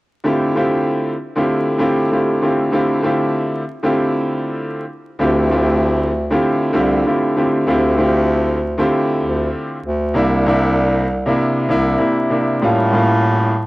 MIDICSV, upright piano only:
0, 0, Header, 1, 2, 480
1, 0, Start_track
1, 0, Key_signature, -1, "minor"
1, 0, Tempo, 618557
1, 196, Time_signature, 4, 2, 24, 8
1, 10605, End_track
2, 0, Start_track
2, 0, Title_t, "Upright piano"
2, 0, Program_c, 0, 0
2, 186, Note_on_c, 0, 50, 90
2, 189, Note_on_c, 0, 57, 76
2, 192, Note_on_c, 0, 60, 76
2, 196, Note_on_c, 0, 64, 74
2, 199, Note_on_c, 0, 65, 77
2, 202, Note_on_c, 0, 67, 96
2, 416, Note_off_c, 0, 50, 0
2, 417, Note_off_c, 0, 57, 0
2, 419, Note_off_c, 0, 60, 0
2, 421, Note_off_c, 0, 64, 0
2, 422, Note_off_c, 0, 65, 0
2, 424, Note_off_c, 0, 67, 0
2, 428, Note_on_c, 0, 50, 80
2, 430, Note_on_c, 0, 57, 78
2, 433, Note_on_c, 0, 60, 82
2, 437, Note_on_c, 0, 64, 81
2, 441, Note_on_c, 0, 65, 75
2, 443, Note_on_c, 0, 67, 95
2, 881, Note_off_c, 0, 50, 0
2, 882, Note_off_c, 0, 57, 0
2, 884, Note_off_c, 0, 60, 0
2, 886, Note_off_c, 0, 64, 0
2, 887, Note_off_c, 0, 65, 0
2, 889, Note_off_c, 0, 67, 0
2, 1050, Note_on_c, 0, 50, 87
2, 1053, Note_on_c, 0, 57, 81
2, 1056, Note_on_c, 0, 60, 82
2, 1060, Note_on_c, 0, 64, 78
2, 1063, Note_on_c, 0, 65, 81
2, 1066, Note_on_c, 0, 67, 93
2, 1369, Note_off_c, 0, 50, 0
2, 1370, Note_off_c, 0, 57, 0
2, 1372, Note_off_c, 0, 60, 0
2, 1374, Note_off_c, 0, 64, 0
2, 1375, Note_off_c, 0, 65, 0
2, 1377, Note_off_c, 0, 67, 0
2, 1381, Note_on_c, 0, 50, 88
2, 1384, Note_on_c, 0, 57, 79
2, 1388, Note_on_c, 0, 60, 88
2, 1391, Note_on_c, 0, 64, 81
2, 1394, Note_on_c, 0, 65, 83
2, 1398, Note_on_c, 0, 67, 101
2, 1613, Note_off_c, 0, 50, 0
2, 1615, Note_off_c, 0, 57, 0
2, 1616, Note_off_c, 0, 60, 0
2, 1618, Note_off_c, 0, 64, 0
2, 1620, Note_off_c, 0, 65, 0
2, 1621, Note_off_c, 0, 67, 0
2, 1638, Note_on_c, 0, 50, 74
2, 1641, Note_on_c, 0, 57, 69
2, 1644, Note_on_c, 0, 60, 68
2, 1647, Note_on_c, 0, 64, 68
2, 1651, Note_on_c, 0, 65, 69
2, 1654, Note_on_c, 0, 67, 85
2, 1862, Note_off_c, 0, 50, 0
2, 1863, Note_off_c, 0, 57, 0
2, 1865, Note_off_c, 0, 60, 0
2, 1866, Note_off_c, 0, 64, 0
2, 1868, Note_off_c, 0, 65, 0
2, 1870, Note_off_c, 0, 67, 0
2, 1875, Note_on_c, 0, 50, 76
2, 1878, Note_on_c, 0, 57, 69
2, 1881, Note_on_c, 0, 60, 75
2, 1884, Note_on_c, 0, 64, 67
2, 1888, Note_on_c, 0, 65, 71
2, 1891, Note_on_c, 0, 67, 82
2, 2098, Note_off_c, 0, 50, 0
2, 2102, Note_off_c, 0, 57, 0
2, 2103, Note_off_c, 0, 60, 0
2, 2105, Note_off_c, 0, 64, 0
2, 2107, Note_off_c, 0, 65, 0
2, 2108, Note_off_c, 0, 67, 0
2, 2110, Note_on_c, 0, 50, 90
2, 2113, Note_on_c, 0, 57, 79
2, 2116, Note_on_c, 0, 60, 84
2, 2120, Note_on_c, 0, 64, 79
2, 2124, Note_on_c, 0, 65, 83
2, 2126, Note_on_c, 0, 67, 96
2, 2336, Note_off_c, 0, 50, 0
2, 2339, Note_off_c, 0, 57, 0
2, 2341, Note_off_c, 0, 60, 0
2, 2343, Note_off_c, 0, 64, 0
2, 2345, Note_off_c, 0, 65, 0
2, 2346, Note_off_c, 0, 67, 0
2, 2348, Note_on_c, 0, 50, 85
2, 2350, Note_on_c, 0, 57, 81
2, 2355, Note_on_c, 0, 60, 80
2, 2357, Note_on_c, 0, 64, 81
2, 2360, Note_on_c, 0, 65, 75
2, 2364, Note_on_c, 0, 67, 96
2, 2801, Note_off_c, 0, 50, 0
2, 2802, Note_off_c, 0, 57, 0
2, 2804, Note_off_c, 0, 60, 0
2, 2806, Note_off_c, 0, 64, 0
2, 2807, Note_off_c, 0, 65, 0
2, 2809, Note_off_c, 0, 67, 0
2, 2972, Note_on_c, 0, 50, 87
2, 2974, Note_on_c, 0, 57, 81
2, 2977, Note_on_c, 0, 60, 88
2, 2981, Note_on_c, 0, 64, 81
2, 2984, Note_on_c, 0, 65, 81
2, 2987, Note_on_c, 0, 67, 98
2, 3738, Note_off_c, 0, 50, 0
2, 3740, Note_off_c, 0, 57, 0
2, 3741, Note_off_c, 0, 60, 0
2, 3743, Note_off_c, 0, 64, 0
2, 3744, Note_off_c, 0, 65, 0
2, 3746, Note_off_c, 0, 67, 0
2, 4026, Note_on_c, 0, 50, 92
2, 4030, Note_on_c, 0, 57, 77
2, 4033, Note_on_c, 0, 60, 81
2, 4037, Note_on_c, 0, 64, 75
2, 4039, Note_on_c, 0, 65, 80
2, 4043, Note_on_c, 0, 67, 100
2, 4256, Note_off_c, 0, 50, 0
2, 4258, Note_off_c, 0, 57, 0
2, 4259, Note_off_c, 0, 60, 0
2, 4261, Note_off_c, 0, 64, 0
2, 4262, Note_off_c, 0, 65, 0
2, 4264, Note_off_c, 0, 67, 0
2, 4268, Note_on_c, 0, 50, 83
2, 4271, Note_on_c, 0, 57, 81
2, 4275, Note_on_c, 0, 60, 85
2, 4279, Note_on_c, 0, 64, 86
2, 4282, Note_on_c, 0, 65, 81
2, 4285, Note_on_c, 0, 67, 96
2, 4721, Note_off_c, 0, 50, 0
2, 4723, Note_off_c, 0, 57, 0
2, 4725, Note_off_c, 0, 60, 0
2, 4726, Note_off_c, 0, 64, 0
2, 4728, Note_off_c, 0, 65, 0
2, 4730, Note_off_c, 0, 67, 0
2, 4891, Note_on_c, 0, 50, 89
2, 4894, Note_on_c, 0, 57, 83
2, 4897, Note_on_c, 0, 60, 84
2, 4901, Note_on_c, 0, 64, 82
2, 4904, Note_on_c, 0, 65, 87
2, 4907, Note_on_c, 0, 67, 98
2, 5209, Note_off_c, 0, 50, 0
2, 5211, Note_off_c, 0, 57, 0
2, 5212, Note_off_c, 0, 60, 0
2, 5214, Note_off_c, 0, 64, 0
2, 5216, Note_off_c, 0, 65, 0
2, 5217, Note_off_c, 0, 67, 0
2, 5221, Note_on_c, 0, 50, 94
2, 5225, Note_on_c, 0, 57, 82
2, 5227, Note_on_c, 0, 60, 90
2, 5231, Note_on_c, 0, 64, 81
2, 5234, Note_on_c, 0, 65, 81
2, 5237, Note_on_c, 0, 67, 103
2, 5453, Note_off_c, 0, 50, 0
2, 5455, Note_off_c, 0, 57, 0
2, 5456, Note_off_c, 0, 60, 0
2, 5458, Note_off_c, 0, 64, 0
2, 5460, Note_off_c, 0, 65, 0
2, 5461, Note_off_c, 0, 67, 0
2, 5476, Note_on_c, 0, 50, 77
2, 5480, Note_on_c, 0, 57, 72
2, 5483, Note_on_c, 0, 60, 69
2, 5486, Note_on_c, 0, 64, 69
2, 5489, Note_on_c, 0, 65, 71
2, 5492, Note_on_c, 0, 67, 87
2, 5701, Note_off_c, 0, 50, 0
2, 5703, Note_off_c, 0, 57, 0
2, 5704, Note_off_c, 0, 60, 0
2, 5706, Note_off_c, 0, 64, 0
2, 5707, Note_off_c, 0, 65, 0
2, 5709, Note_off_c, 0, 67, 0
2, 5714, Note_on_c, 0, 50, 79
2, 5716, Note_on_c, 0, 57, 70
2, 5720, Note_on_c, 0, 60, 75
2, 5723, Note_on_c, 0, 64, 70
2, 5727, Note_on_c, 0, 65, 74
2, 5730, Note_on_c, 0, 67, 84
2, 5937, Note_off_c, 0, 50, 0
2, 5941, Note_off_c, 0, 57, 0
2, 5942, Note_off_c, 0, 60, 0
2, 5944, Note_off_c, 0, 64, 0
2, 5946, Note_off_c, 0, 65, 0
2, 5948, Note_off_c, 0, 67, 0
2, 5949, Note_on_c, 0, 50, 89
2, 5953, Note_on_c, 0, 57, 84
2, 5957, Note_on_c, 0, 60, 84
2, 5960, Note_on_c, 0, 64, 80
2, 5962, Note_on_c, 0, 65, 88
2, 5966, Note_on_c, 0, 67, 101
2, 6177, Note_off_c, 0, 50, 0
2, 6179, Note_off_c, 0, 57, 0
2, 6181, Note_off_c, 0, 60, 0
2, 6183, Note_off_c, 0, 64, 0
2, 6184, Note_off_c, 0, 65, 0
2, 6186, Note_off_c, 0, 67, 0
2, 6189, Note_on_c, 0, 50, 84
2, 6191, Note_on_c, 0, 57, 78
2, 6195, Note_on_c, 0, 60, 81
2, 6198, Note_on_c, 0, 64, 81
2, 6202, Note_on_c, 0, 65, 79
2, 6205, Note_on_c, 0, 67, 97
2, 6641, Note_off_c, 0, 50, 0
2, 6643, Note_off_c, 0, 57, 0
2, 6644, Note_off_c, 0, 60, 0
2, 6646, Note_off_c, 0, 64, 0
2, 6648, Note_off_c, 0, 65, 0
2, 6649, Note_off_c, 0, 67, 0
2, 6810, Note_on_c, 0, 50, 93
2, 6814, Note_on_c, 0, 57, 84
2, 6817, Note_on_c, 0, 60, 87
2, 6820, Note_on_c, 0, 64, 80
2, 6824, Note_on_c, 0, 65, 85
2, 6827, Note_on_c, 0, 67, 105
2, 7577, Note_off_c, 0, 50, 0
2, 7579, Note_off_c, 0, 57, 0
2, 7581, Note_off_c, 0, 60, 0
2, 7582, Note_off_c, 0, 64, 0
2, 7584, Note_off_c, 0, 65, 0
2, 7586, Note_off_c, 0, 67, 0
2, 7870, Note_on_c, 0, 48, 89
2, 7875, Note_on_c, 0, 58, 91
2, 7880, Note_on_c, 0, 62, 84
2, 7886, Note_on_c, 0, 64, 99
2, 8098, Note_off_c, 0, 48, 0
2, 8100, Note_off_c, 0, 58, 0
2, 8103, Note_off_c, 0, 62, 0
2, 8106, Note_off_c, 0, 64, 0
2, 8117, Note_on_c, 0, 48, 98
2, 8122, Note_on_c, 0, 58, 82
2, 8128, Note_on_c, 0, 62, 87
2, 8133, Note_on_c, 0, 64, 100
2, 8565, Note_off_c, 0, 48, 0
2, 8568, Note_off_c, 0, 58, 0
2, 8571, Note_off_c, 0, 62, 0
2, 8574, Note_off_c, 0, 64, 0
2, 8734, Note_on_c, 0, 48, 94
2, 8740, Note_on_c, 0, 58, 83
2, 8745, Note_on_c, 0, 62, 86
2, 8750, Note_on_c, 0, 64, 98
2, 9051, Note_off_c, 0, 48, 0
2, 9054, Note_off_c, 0, 58, 0
2, 9056, Note_off_c, 0, 62, 0
2, 9059, Note_off_c, 0, 64, 0
2, 9069, Note_on_c, 0, 48, 92
2, 9074, Note_on_c, 0, 58, 84
2, 9079, Note_on_c, 0, 62, 82
2, 9085, Note_on_c, 0, 64, 110
2, 9285, Note_off_c, 0, 48, 0
2, 9291, Note_off_c, 0, 58, 0
2, 9296, Note_off_c, 0, 62, 0
2, 9297, Note_on_c, 0, 48, 76
2, 9301, Note_off_c, 0, 64, 0
2, 9302, Note_on_c, 0, 58, 73
2, 9307, Note_on_c, 0, 62, 64
2, 9313, Note_on_c, 0, 64, 82
2, 9531, Note_off_c, 0, 48, 0
2, 9534, Note_off_c, 0, 58, 0
2, 9536, Note_off_c, 0, 62, 0
2, 9539, Note_off_c, 0, 64, 0
2, 9544, Note_on_c, 0, 48, 80
2, 9549, Note_on_c, 0, 58, 65
2, 9555, Note_on_c, 0, 62, 72
2, 9561, Note_on_c, 0, 64, 82
2, 9775, Note_off_c, 0, 48, 0
2, 9777, Note_off_c, 0, 58, 0
2, 9780, Note_off_c, 0, 62, 0
2, 9783, Note_off_c, 0, 64, 0
2, 9792, Note_on_c, 0, 45, 86
2, 9796, Note_on_c, 0, 55, 82
2, 9800, Note_on_c, 0, 58, 76
2, 9804, Note_on_c, 0, 61, 79
2, 9808, Note_on_c, 0, 65, 98
2, 10019, Note_off_c, 0, 45, 0
2, 10020, Note_off_c, 0, 55, 0
2, 10023, Note_off_c, 0, 58, 0
2, 10025, Note_off_c, 0, 61, 0
2, 10027, Note_off_c, 0, 65, 0
2, 10031, Note_on_c, 0, 45, 88
2, 10036, Note_on_c, 0, 55, 81
2, 10039, Note_on_c, 0, 58, 86
2, 10043, Note_on_c, 0, 61, 79
2, 10047, Note_on_c, 0, 65, 104
2, 10483, Note_off_c, 0, 45, 0
2, 10485, Note_off_c, 0, 55, 0
2, 10487, Note_off_c, 0, 58, 0
2, 10489, Note_off_c, 0, 61, 0
2, 10491, Note_off_c, 0, 65, 0
2, 10605, End_track
0, 0, End_of_file